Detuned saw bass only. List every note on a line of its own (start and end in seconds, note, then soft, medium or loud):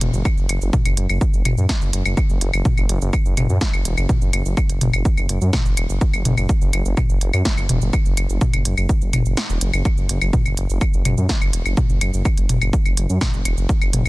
0.01 0.11 E1 loud
0.13 0.22 F#1 medium
0.37 0.46 F#1 medium
0.49 0.59 F#1 loud
0.61 0.70 F#1 medium
0.85 0.94 F#1 medium
0.97 1.07 F#1 loud
1.09 1.18 F#1 medium
1.33 1.42 F#1 medium
1.45 1.55 F#1 loud
1.57 1.66 F#2 medium
1.81 1.90 F#1 medium
1.93 2.03 F#1 loud
2.05 2.14 F#1 medium
2.29 2.38 F#1 medium
2.41 2.51 F#1 loud
2.53 2.62 F#1 medium
2.77 2.86 F#1 medium
2.89 2.99 F#1 loud
3.01 3.10 F#1 medium
3.25 3.34 F#1 medium
3.37 3.47 F#1 loud
3.49 3.58 F#2 medium
3.73 3.82 F#1 medium
3.85 3.95 E1 loud
3.97 4.06 F#1 medium
4.21 4.30 F#1 medium
4.33 4.43 F#1 loud
4.45 4.54 F#1 medium
4.69 4.78 F#1 medium
4.81 4.91 F#1 loud
4.93 5.02 F#1 loud
5.17 5.26 F#1 medium
5.29 5.39 F#1 loud
5.41 5.50 F#2 medium
5.65 5.74 F#1 medium
5.77 5.87 E1 loud
5.89 5.98 F#1 loud
6.13 6.22 F#1 medium
6.25 6.35 F#1 loud
6.37 6.46 F#1 medium
6.61 6.70 F#1 medium
6.73 6.83 F#1 loud
6.85 6.94 F#1 loud
7.09 7.18 F#1 medium
7.21 7.31 F#1 loud
7.34 7.42 F#2 medium
7.58 7.67 F#1 medium
7.69 7.79 E1 loud
7.82 7.91 F#1 medium
8.06 8.15 F#1 medium
8.17 8.27 F#1 loud
8.30 8.39 F#1 medium
8.54 8.63 F#1 medium
8.65 8.75 F#1 medium
8.78 8.87 F#1 medium
9.02 9.11 F#1 medium
9.13 9.23 F#1 loud
9.26 9.35 F#1 medium
9.50 9.59 E1 medium
9.61 9.71 F#1 medium
9.74 9.83 F#1 loud
9.98 10.07 F#1 medium
10.09 10.19 F#1 medium
10.22 10.30 F#1 medium
10.46 10.54 F#1 medium
10.57 10.67 F#1 loud
10.70 10.78 F#1 medium
10.94 11.02 F#1 medium
11.05 11.15 F#1 loud
11.18 11.27 F#2 medium
11.42 11.51 F#1 medium
11.53 11.63 E1 loud
11.65 11.74 F#1 medium
11.90 11.98 F#1 medium
12.01 12.11 F#1 loud
12.14 12.23 F#1 medium
12.38 12.47 F#1 medium
12.49 12.59 F#1 loud
12.62 12.71 F#1 medium
12.86 12.95 F#1 medium
12.97 13.07 F#1 loud
13.09 13.18 F#2 medium
13.33 13.42 F#1 medium
13.45 13.55 E1 loud
13.57 13.66 F#1 medium
13.81 13.90 F#1 medium
13.93 14.03 F#1 loud
14.05 14.09 F#1 medium